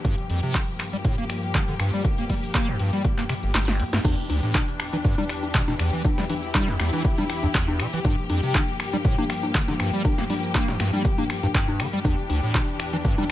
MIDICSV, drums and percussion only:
0, 0, Header, 1, 2, 480
1, 0, Start_track
1, 0, Tempo, 500000
1, 45, Time_signature, 4, 2, 24, 8
1, 12786, End_track
2, 0, Start_track
2, 0, Title_t, "Drums"
2, 45, Note_on_c, 9, 36, 114
2, 45, Note_on_c, 9, 42, 94
2, 141, Note_off_c, 9, 36, 0
2, 141, Note_off_c, 9, 42, 0
2, 173, Note_on_c, 9, 42, 38
2, 269, Note_off_c, 9, 42, 0
2, 284, Note_on_c, 9, 46, 94
2, 380, Note_off_c, 9, 46, 0
2, 414, Note_on_c, 9, 42, 39
2, 510, Note_off_c, 9, 42, 0
2, 524, Note_on_c, 9, 42, 89
2, 525, Note_on_c, 9, 36, 113
2, 526, Note_on_c, 9, 39, 110
2, 620, Note_off_c, 9, 42, 0
2, 621, Note_off_c, 9, 36, 0
2, 622, Note_off_c, 9, 39, 0
2, 654, Note_on_c, 9, 42, 38
2, 750, Note_off_c, 9, 42, 0
2, 765, Note_on_c, 9, 26, 82
2, 765, Note_on_c, 9, 46, 96
2, 766, Note_on_c, 9, 39, 36
2, 861, Note_off_c, 9, 26, 0
2, 861, Note_off_c, 9, 46, 0
2, 862, Note_off_c, 9, 39, 0
2, 894, Note_on_c, 9, 42, 39
2, 990, Note_off_c, 9, 42, 0
2, 1004, Note_on_c, 9, 42, 94
2, 1005, Note_on_c, 9, 36, 105
2, 1100, Note_off_c, 9, 42, 0
2, 1101, Note_off_c, 9, 36, 0
2, 1133, Note_on_c, 9, 42, 41
2, 1229, Note_off_c, 9, 42, 0
2, 1244, Note_on_c, 9, 26, 66
2, 1244, Note_on_c, 9, 46, 100
2, 1340, Note_off_c, 9, 26, 0
2, 1340, Note_off_c, 9, 46, 0
2, 1374, Note_on_c, 9, 42, 39
2, 1470, Note_off_c, 9, 42, 0
2, 1484, Note_on_c, 9, 42, 94
2, 1485, Note_on_c, 9, 36, 114
2, 1485, Note_on_c, 9, 39, 110
2, 1580, Note_off_c, 9, 42, 0
2, 1581, Note_off_c, 9, 36, 0
2, 1581, Note_off_c, 9, 39, 0
2, 1613, Note_on_c, 9, 42, 37
2, 1709, Note_off_c, 9, 42, 0
2, 1724, Note_on_c, 9, 26, 81
2, 1724, Note_on_c, 9, 46, 104
2, 1820, Note_off_c, 9, 26, 0
2, 1820, Note_off_c, 9, 46, 0
2, 1853, Note_on_c, 9, 42, 37
2, 1949, Note_off_c, 9, 42, 0
2, 1964, Note_on_c, 9, 36, 120
2, 1964, Note_on_c, 9, 42, 92
2, 2060, Note_off_c, 9, 36, 0
2, 2060, Note_off_c, 9, 42, 0
2, 2094, Note_on_c, 9, 42, 40
2, 2190, Note_off_c, 9, 42, 0
2, 2203, Note_on_c, 9, 46, 98
2, 2205, Note_on_c, 9, 36, 57
2, 2299, Note_off_c, 9, 46, 0
2, 2301, Note_off_c, 9, 36, 0
2, 2333, Note_on_c, 9, 46, 59
2, 2429, Note_off_c, 9, 46, 0
2, 2443, Note_on_c, 9, 42, 99
2, 2444, Note_on_c, 9, 39, 121
2, 2445, Note_on_c, 9, 36, 113
2, 2539, Note_off_c, 9, 42, 0
2, 2540, Note_off_c, 9, 39, 0
2, 2541, Note_off_c, 9, 36, 0
2, 2573, Note_on_c, 9, 42, 40
2, 2669, Note_off_c, 9, 42, 0
2, 2682, Note_on_c, 9, 46, 105
2, 2778, Note_off_c, 9, 46, 0
2, 2812, Note_on_c, 9, 42, 41
2, 2908, Note_off_c, 9, 42, 0
2, 2923, Note_on_c, 9, 42, 96
2, 2925, Note_on_c, 9, 36, 118
2, 3019, Note_off_c, 9, 42, 0
2, 3021, Note_off_c, 9, 36, 0
2, 3053, Note_on_c, 9, 42, 42
2, 3054, Note_on_c, 9, 39, 39
2, 3149, Note_off_c, 9, 42, 0
2, 3150, Note_off_c, 9, 39, 0
2, 3163, Note_on_c, 9, 26, 63
2, 3163, Note_on_c, 9, 46, 100
2, 3259, Note_off_c, 9, 26, 0
2, 3259, Note_off_c, 9, 46, 0
2, 3293, Note_on_c, 9, 42, 40
2, 3389, Note_off_c, 9, 42, 0
2, 3404, Note_on_c, 9, 38, 64
2, 3404, Note_on_c, 9, 42, 96
2, 3405, Note_on_c, 9, 39, 117
2, 3500, Note_off_c, 9, 38, 0
2, 3500, Note_off_c, 9, 42, 0
2, 3501, Note_off_c, 9, 39, 0
2, 3533, Note_on_c, 9, 38, 61
2, 3533, Note_on_c, 9, 42, 38
2, 3629, Note_off_c, 9, 38, 0
2, 3629, Note_off_c, 9, 42, 0
2, 3643, Note_on_c, 9, 46, 103
2, 3739, Note_off_c, 9, 46, 0
2, 3773, Note_on_c, 9, 38, 83
2, 3773, Note_on_c, 9, 42, 38
2, 3869, Note_off_c, 9, 38, 0
2, 3869, Note_off_c, 9, 42, 0
2, 3885, Note_on_c, 9, 36, 117
2, 3885, Note_on_c, 9, 42, 86
2, 3885, Note_on_c, 9, 49, 102
2, 3885, Note_on_c, 9, 63, 64
2, 3887, Note_on_c, 9, 82, 58
2, 3981, Note_off_c, 9, 36, 0
2, 3981, Note_off_c, 9, 42, 0
2, 3981, Note_off_c, 9, 49, 0
2, 3981, Note_off_c, 9, 63, 0
2, 3983, Note_off_c, 9, 82, 0
2, 4014, Note_on_c, 9, 42, 37
2, 4016, Note_on_c, 9, 82, 34
2, 4110, Note_off_c, 9, 42, 0
2, 4112, Note_off_c, 9, 82, 0
2, 4125, Note_on_c, 9, 46, 105
2, 4125, Note_on_c, 9, 63, 40
2, 4221, Note_off_c, 9, 46, 0
2, 4221, Note_off_c, 9, 63, 0
2, 4254, Note_on_c, 9, 42, 40
2, 4256, Note_on_c, 9, 82, 65
2, 4350, Note_off_c, 9, 42, 0
2, 4352, Note_off_c, 9, 82, 0
2, 4365, Note_on_c, 9, 36, 122
2, 4365, Note_on_c, 9, 42, 86
2, 4365, Note_on_c, 9, 63, 61
2, 4366, Note_on_c, 9, 39, 118
2, 4367, Note_on_c, 9, 82, 53
2, 4461, Note_off_c, 9, 36, 0
2, 4461, Note_off_c, 9, 42, 0
2, 4461, Note_off_c, 9, 63, 0
2, 4462, Note_off_c, 9, 39, 0
2, 4463, Note_off_c, 9, 82, 0
2, 4494, Note_on_c, 9, 42, 58
2, 4497, Note_on_c, 9, 82, 34
2, 4590, Note_off_c, 9, 42, 0
2, 4593, Note_off_c, 9, 82, 0
2, 4605, Note_on_c, 9, 26, 77
2, 4605, Note_on_c, 9, 46, 112
2, 4701, Note_off_c, 9, 26, 0
2, 4701, Note_off_c, 9, 46, 0
2, 4733, Note_on_c, 9, 42, 54
2, 4733, Note_on_c, 9, 63, 43
2, 4736, Note_on_c, 9, 82, 72
2, 4829, Note_off_c, 9, 42, 0
2, 4829, Note_off_c, 9, 63, 0
2, 4832, Note_off_c, 9, 82, 0
2, 4843, Note_on_c, 9, 42, 81
2, 4845, Note_on_c, 9, 36, 115
2, 4846, Note_on_c, 9, 82, 56
2, 4939, Note_off_c, 9, 42, 0
2, 4941, Note_off_c, 9, 36, 0
2, 4942, Note_off_c, 9, 82, 0
2, 4973, Note_on_c, 9, 63, 61
2, 4975, Note_on_c, 9, 82, 34
2, 5069, Note_off_c, 9, 63, 0
2, 5071, Note_off_c, 9, 82, 0
2, 5083, Note_on_c, 9, 26, 65
2, 5083, Note_on_c, 9, 46, 105
2, 5179, Note_off_c, 9, 26, 0
2, 5179, Note_off_c, 9, 46, 0
2, 5212, Note_on_c, 9, 42, 39
2, 5212, Note_on_c, 9, 63, 40
2, 5214, Note_on_c, 9, 82, 65
2, 5308, Note_off_c, 9, 42, 0
2, 5308, Note_off_c, 9, 63, 0
2, 5310, Note_off_c, 9, 82, 0
2, 5323, Note_on_c, 9, 42, 84
2, 5324, Note_on_c, 9, 39, 123
2, 5325, Note_on_c, 9, 36, 122
2, 5325, Note_on_c, 9, 82, 57
2, 5419, Note_off_c, 9, 42, 0
2, 5420, Note_off_c, 9, 39, 0
2, 5421, Note_off_c, 9, 36, 0
2, 5421, Note_off_c, 9, 82, 0
2, 5452, Note_on_c, 9, 38, 32
2, 5452, Note_on_c, 9, 42, 38
2, 5452, Note_on_c, 9, 63, 58
2, 5454, Note_on_c, 9, 82, 34
2, 5548, Note_off_c, 9, 38, 0
2, 5548, Note_off_c, 9, 42, 0
2, 5548, Note_off_c, 9, 63, 0
2, 5550, Note_off_c, 9, 82, 0
2, 5563, Note_on_c, 9, 26, 76
2, 5563, Note_on_c, 9, 46, 109
2, 5659, Note_off_c, 9, 26, 0
2, 5659, Note_off_c, 9, 46, 0
2, 5694, Note_on_c, 9, 82, 66
2, 5790, Note_off_c, 9, 82, 0
2, 5804, Note_on_c, 9, 42, 83
2, 5804, Note_on_c, 9, 63, 63
2, 5805, Note_on_c, 9, 36, 127
2, 5806, Note_on_c, 9, 82, 52
2, 5900, Note_off_c, 9, 42, 0
2, 5900, Note_off_c, 9, 63, 0
2, 5901, Note_off_c, 9, 36, 0
2, 5902, Note_off_c, 9, 82, 0
2, 5932, Note_on_c, 9, 38, 37
2, 5932, Note_on_c, 9, 42, 38
2, 5935, Note_on_c, 9, 82, 32
2, 6028, Note_off_c, 9, 38, 0
2, 6028, Note_off_c, 9, 42, 0
2, 6031, Note_off_c, 9, 82, 0
2, 6044, Note_on_c, 9, 46, 108
2, 6044, Note_on_c, 9, 63, 41
2, 6140, Note_off_c, 9, 46, 0
2, 6140, Note_off_c, 9, 63, 0
2, 6172, Note_on_c, 9, 42, 38
2, 6175, Note_on_c, 9, 82, 66
2, 6268, Note_off_c, 9, 42, 0
2, 6271, Note_off_c, 9, 82, 0
2, 6283, Note_on_c, 9, 42, 82
2, 6283, Note_on_c, 9, 63, 62
2, 6284, Note_on_c, 9, 39, 125
2, 6285, Note_on_c, 9, 36, 127
2, 6286, Note_on_c, 9, 82, 54
2, 6379, Note_off_c, 9, 42, 0
2, 6379, Note_off_c, 9, 63, 0
2, 6380, Note_off_c, 9, 39, 0
2, 6381, Note_off_c, 9, 36, 0
2, 6382, Note_off_c, 9, 82, 0
2, 6413, Note_on_c, 9, 38, 37
2, 6413, Note_on_c, 9, 42, 52
2, 6415, Note_on_c, 9, 82, 31
2, 6509, Note_off_c, 9, 38, 0
2, 6509, Note_off_c, 9, 42, 0
2, 6511, Note_off_c, 9, 82, 0
2, 6524, Note_on_c, 9, 26, 75
2, 6524, Note_on_c, 9, 38, 36
2, 6524, Note_on_c, 9, 46, 115
2, 6620, Note_off_c, 9, 26, 0
2, 6620, Note_off_c, 9, 38, 0
2, 6620, Note_off_c, 9, 46, 0
2, 6652, Note_on_c, 9, 42, 52
2, 6652, Note_on_c, 9, 63, 43
2, 6655, Note_on_c, 9, 82, 66
2, 6748, Note_off_c, 9, 42, 0
2, 6748, Note_off_c, 9, 63, 0
2, 6751, Note_off_c, 9, 82, 0
2, 6764, Note_on_c, 9, 42, 79
2, 6765, Note_on_c, 9, 36, 123
2, 6767, Note_on_c, 9, 82, 51
2, 6860, Note_off_c, 9, 42, 0
2, 6861, Note_off_c, 9, 36, 0
2, 6863, Note_off_c, 9, 82, 0
2, 6894, Note_on_c, 9, 42, 39
2, 6894, Note_on_c, 9, 63, 61
2, 6896, Note_on_c, 9, 82, 32
2, 6990, Note_off_c, 9, 42, 0
2, 6990, Note_off_c, 9, 63, 0
2, 6992, Note_off_c, 9, 82, 0
2, 7004, Note_on_c, 9, 26, 62
2, 7004, Note_on_c, 9, 46, 116
2, 7100, Note_off_c, 9, 26, 0
2, 7100, Note_off_c, 9, 46, 0
2, 7133, Note_on_c, 9, 42, 38
2, 7133, Note_on_c, 9, 63, 41
2, 7136, Note_on_c, 9, 82, 64
2, 7229, Note_off_c, 9, 42, 0
2, 7229, Note_off_c, 9, 63, 0
2, 7232, Note_off_c, 9, 82, 0
2, 7244, Note_on_c, 9, 42, 83
2, 7245, Note_on_c, 9, 36, 122
2, 7246, Note_on_c, 9, 39, 127
2, 7247, Note_on_c, 9, 82, 53
2, 7340, Note_off_c, 9, 42, 0
2, 7341, Note_off_c, 9, 36, 0
2, 7342, Note_off_c, 9, 39, 0
2, 7343, Note_off_c, 9, 82, 0
2, 7374, Note_on_c, 9, 42, 35
2, 7374, Note_on_c, 9, 63, 59
2, 7376, Note_on_c, 9, 82, 29
2, 7470, Note_off_c, 9, 42, 0
2, 7470, Note_off_c, 9, 63, 0
2, 7472, Note_off_c, 9, 82, 0
2, 7484, Note_on_c, 9, 26, 78
2, 7484, Note_on_c, 9, 46, 107
2, 7580, Note_off_c, 9, 26, 0
2, 7580, Note_off_c, 9, 46, 0
2, 7613, Note_on_c, 9, 42, 40
2, 7616, Note_on_c, 9, 82, 68
2, 7709, Note_off_c, 9, 42, 0
2, 7712, Note_off_c, 9, 82, 0
2, 7725, Note_on_c, 9, 36, 127
2, 7725, Note_on_c, 9, 42, 80
2, 7725, Note_on_c, 9, 63, 67
2, 7727, Note_on_c, 9, 82, 54
2, 7821, Note_off_c, 9, 36, 0
2, 7821, Note_off_c, 9, 42, 0
2, 7821, Note_off_c, 9, 63, 0
2, 7823, Note_off_c, 9, 82, 0
2, 7854, Note_on_c, 9, 42, 35
2, 7856, Note_on_c, 9, 82, 32
2, 7950, Note_off_c, 9, 42, 0
2, 7952, Note_off_c, 9, 82, 0
2, 7964, Note_on_c, 9, 46, 107
2, 7964, Note_on_c, 9, 63, 43
2, 8060, Note_off_c, 9, 46, 0
2, 8060, Note_off_c, 9, 63, 0
2, 8094, Note_on_c, 9, 42, 37
2, 8097, Note_on_c, 9, 82, 67
2, 8190, Note_off_c, 9, 42, 0
2, 8193, Note_off_c, 9, 82, 0
2, 8205, Note_on_c, 9, 42, 78
2, 8205, Note_on_c, 9, 63, 62
2, 8206, Note_on_c, 9, 36, 127
2, 8207, Note_on_c, 9, 39, 127
2, 8208, Note_on_c, 9, 82, 53
2, 8301, Note_off_c, 9, 42, 0
2, 8301, Note_off_c, 9, 63, 0
2, 8302, Note_off_c, 9, 36, 0
2, 8303, Note_off_c, 9, 39, 0
2, 8304, Note_off_c, 9, 82, 0
2, 8335, Note_on_c, 9, 42, 50
2, 8338, Note_on_c, 9, 82, 33
2, 8431, Note_off_c, 9, 42, 0
2, 8434, Note_off_c, 9, 82, 0
2, 8446, Note_on_c, 9, 26, 80
2, 8446, Note_on_c, 9, 46, 111
2, 8542, Note_off_c, 9, 26, 0
2, 8542, Note_off_c, 9, 46, 0
2, 8575, Note_on_c, 9, 42, 55
2, 8575, Note_on_c, 9, 63, 44
2, 8578, Note_on_c, 9, 82, 68
2, 8671, Note_off_c, 9, 42, 0
2, 8671, Note_off_c, 9, 63, 0
2, 8674, Note_off_c, 9, 82, 0
2, 8686, Note_on_c, 9, 36, 126
2, 8686, Note_on_c, 9, 42, 76
2, 8688, Note_on_c, 9, 82, 52
2, 8782, Note_off_c, 9, 36, 0
2, 8782, Note_off_c, 9, 42, 0
2, 8784, Note_off_c, 9, 82, 0
2, 8815, Note_on_c, 9, 63, 65
2, 8818, Note_on_c, 9, 82, 31
2, 8911, Note_off_c, 9, 63, 0
2, 8914, Note_off_c, 9, 82, 0
2, 8926, Note_on_c, 9, 26, 62
2, 8926, Note_on_c, 9, 46, 114
2, 9022, Note_off_c, 9, 26, 0
2, 9022, Note_off_c, 9, 46, 0
2, 9054, Note_on_c, 9, 42, 36
2, 9054, Note_on_c, 9, 63, 43
2, 9057, Note_on_c, 9, 82, 64
2, 9150, Note_off_c, 9, 42, 0
2, 9150, Note_off_c, 9, 63, 0
2, 9153, Note_off_c, 9, 82, 0
2, 9165, Note_on_c, 9, 42, 80
2, 9166, Note_on_c, 9, 36, 127
2, 9167, Note_on_c, 9, 39, 121
2, 9168, Note_on_c, 9, 82, 57
2, 9261, Note_off_c, 9, 42, 0
2, 9262, Note_off_c, 9, 36, 0
2, 9263, Note_off_c, 9, 39, 0
2, 9264, Note_off_c, 9, 82, 0
2, 9295, Note_on_c, 9, 38, 36
2, 9295, Note_on_c, 9, 42, 34
2, 9295, Note_on_c, 9, 63, 61
2, 9298, Note_on_c, 9, 82, 32
2, 9391, Note_off_c, 9, 38, 0
2, 9391, Note_off_c, 9, 42, 0
2, 9391, Note_off_c, 9, 63, 0
2, 9394, Note_off_c, 9, 82, 0
2, 9406, Note_on_c, 9, 26, 81
2, 9406, Note_on_c, 9, 46, 119
2, 9502, Note_off_c, 9, 26, 0
2, 9502, Note_off_c, 9, 46, 0
2, 9538, Note_on_c, 9, 82, 62
2, 9634, Note_off_c, 9, 82, 0
2, 9646, Note_on_c, 9, 36, 124
2, 9646, Note_on_c, 9, 42, 75
2, 9646, Note_on_c, 9, 63, 63
2, 9648, Note_on_c, 9, 82, 55
2, 9742, Note_off_c, 9, 36, 0
2, 9742, Note_off_c, 9, 42, 0
2, 9742, Note_off_c, 9, 63, 0
2, 9744, Note_off_c, 9, 82, 0
2, 9775, Note_on_c, 9, 38, 38
2, 9775, Note_on_c, 9, 42, 35
2, 9778, Note_on_c, 9, 82, 31
2, 9871, Note_off_c, 9, 38, 0
2, 9871, Note_off_c, 9, 42, 0
2, 9874, Note_off_c, 9, 82, 0
2, 9886, Note_on_c, 9, 46, 108
2, 9886, Note_on_c, 9, 63, 39
2, 9982, Note_off_c, 9, 46, 0
2, 9982, Note_off_c, 9, 63, 0
2, 10015, Note_on_c, 9, 42, 35
2, 10018, Note_on_c, 9, 82, 68
2, 10111, Note_off_c, 9, 42, 0
2, 10114, Note_off_c, 9, 82, 0
2, 10126, Note_on_c, 9, 36, 126
2, 10126, Note_on_c, 9, 42, 80
2, 10126, Note_on_c, 9, 63, 63
2, 10127, Note_on_c, 9, 39, 116
2, 10128, Note_on_c, 9, 82, 54
2, 10222, Note_off_c, 9, 36, 0
2, 10222, Note_off_c, 9, 42, 0
2, 10222, Note_off_c, 9, 63, 0
2, 10223, Note_off_c, 9, 39, 0
2, 10224, Note_off_c, 9, 82, 0
2, 10256, Note_on_c, 9, 38, 38
2, 10256, Note_on_c, 9, 42, 50
2, 10258, Note_on_c, 9, 82, 31
2, 10352, Note_off_c, 9, 38, 0
2, 10352, Note_off_c, 9, 42, 0
2, 10354, Note_off_c, 9, 82, 0
2, 10367, Note_on_c, 9, 26, 80
2, 10367, Note_on_c, 9, 38, 40
2, 10367, Note_on_c, 9, 46, 111
2, 10463, Note_off_c, 9, 26, 0
2, 10463, Note_off_c, 9, 38, 0
2, 10463, Note_off_c, 9, 46, 0
2, 10495, Note_on_c, 9, 42, 51
2, 10495, Note_on_c, 9, 63, 42
2, 10498, Note_on_c, 9, 82, 65
2, 10591, Note_off_c, 9, 42, 0
2, 10591, Note_off_c, 9, 63, 0
2, 10594, Note_off_c, 9, 82, 0
2, 10606, Note_on_c, 9, 36, 124
2, 10606, Note_on_c, 9, 42, 77
2, 10609, Note_on_c, 9, 82, 55
2, 10702, Note_off_c, 9, 36, 0
2, 10702, Note_off_c, 9, 42, 0
2, 10705, Note_off_c, 9, 82, 0
2, 10736, Note_on_c, 9, 42, 36
2, 10736, Note_on_c, 9, 63, 62
2, 10738, Note_on_c, 9, 82, 33
2, 10832, Note_off_c, 9, 42, 0
2, 10832, Note_off_c, 9, 63, 0
2, 10834, Note_off_c, 9, 82, 0
2, 10847, Note_on_c, 9, 26, 67
2, 10847, Note_on_c, 9, 46, 109
2, 10943, Note_off_c, 9, 26, 0
2, 10943, Note_off_c, 9, 46, 0
2, 10976, Note_on_c, 9, 42, 34
2, 10976, Note_on_c, 9, 63, 42
2, 10979, Note_on_c, 9, 82, 68
2, 11072, Note_off_c, 9, 42, 0
2, 11072, Note_off_c, 9, 63, 0
2, 11075, Note_off_c, 9, 82, 0
2, 11086, Note_on_c, 9, 36, 121
2, 11087, Note_on_c, 9, 42, 73
2, 11089, Note_on_c, 9, 39, 116
2, 11090, Note_on_c, 9, 82, 55
2, 11182, Note_off_c, 9, 36, 0
2, 11183, Note_off_c, 9, 42, 0
2, 11185, Note_off_c, 9, 39, 0
2, 11186, Note_off_c, 9, 82, 0
2, 11216, Note_on_c, 9, 42, 33
2, 11216, Note_on_c, 9, 63, 58
2, 11218, Note_on_c, 9, 82, 29
2, 11312, Note_off_c, 9, 42, 0
2, 11312, Note_off_c, 9, 63, 0
2, 11314, Note_off_c, 9, 82, 0
2, 11326, Note_on_c, 9, 26, 82
2, 11326, Note_on_c, 9, 46, 117
2, 11422, Note_off_c, 9, 26, 0
2, 11422, Note_off_c, 9, 46, 0
2, 11454, Note_on_c, 9, 42, 37
2, 11457, Note_on_c, 9, 82, 69
2, 11550, Note_off_c, 9, 42, 0
2, 11553, Note_off_c, 9, 82, 0
2, 11566, Note_on_c, 9, 36, 121
2, 11566, Note_on_c, 9, 42, 76
2, 11566, Note_on_c, 9, 63, 60
2, 11568, Note_on_c, 9, 82, 59
2, 11662, Note_off_c, 9, 36, 0
2, 11662, Note_off_c, 9, 42, 0
2, 11662, Note_off_c, 9, 63, 0
2, 11664, Note_off_c, 9, 82, 0
2, 11694, Note_on_c, 9, 42, 36
2, 11697, Note_on_c, 9, 82, 33
2, 11790, Note_off_c, 9, 42, 0
2, 11793, Note_off_c, 9, 82, 0
2, 11806, Note_on_c, 9, 46, 106
2, 11806, Note_on_c, 9, 63, 40
2, 11902, Note_off_c, 9, 46, 0
2, 11902, Note_off_c, 9, 63, 0
2, 11935, Note_on_c, 9, 42, 38
2, 11937, Note_on_c, 9, 82, 69
2, 12031, Note_off_c, 9, 42, 0
2, 12033, Note_off_c, 9, 82, 0
2, 12044, Note_on_c, 9, 42, 72
2, 12044, Note_on_c, 9, 63, 58
2, 12045, Note_on_c, 9, 36, 123
2, 12046, Note_on_c, 9, 39, 116
2, 12047, Note_on_c, 9, 82, 57
2, 12140, Note_off_c, 9, 42, 0
2, 12140, Note_off_c, 9, 63, 0
2, 12141, Note_off_c, 9, 36, 0
2, 12142, Note_off_c, 9, 39, 0
2, 12143, Note_off_c, 9, 82, 0
2, 12173, Note_on_c, 9, 42, 51
2, 12176, Note_on_c, 9, 82, 34
2, 12269, Note_off_c, 9, 42, 0
2, 12272, Note_off_c, 9, 82, 0
2, 12284, Note_on_c, 9, 26, 86
2, 12284, Note_on_c, 9, 46, 108
2, 12380, Note_off_c, 9, 26, 0
2, 12380, Note_off_c, 9, 46, 0
2, 12414, Note_on_c, 9, 42, 52
2, 12414, Note_on_c, 9, 63, 39
2, 12417, Note_on_c, 9, 82, 67
2, 12510, Note_off_c, 9, 42, 0
2, 12510, Note_off_c, 9, 63, 0
2, 12513, Note_off_c, 9, 82, 0
2, 12525, Note_on_c, 9, 36, 119
2, 12525, Note_on_c, 9, 42, 75
2, 12527, Note_on_c, 9, 82, 55
2, 12621, Note_off_c, 9, 36, 0
2, 12621, Note_off_c, 9, 42, 0
2, 12623, Note_off_c, 9, 82, 0
2, 12653, Note_on_c, 9, 63, 60
2, 12655, Note_on_c, 9, 82, 34
2, 12749, Note_off_c, 9, 63, 0
2, 12751, Note_off_c, 9, 82, 0
2, 12786, End_track
0, 0, End_of_file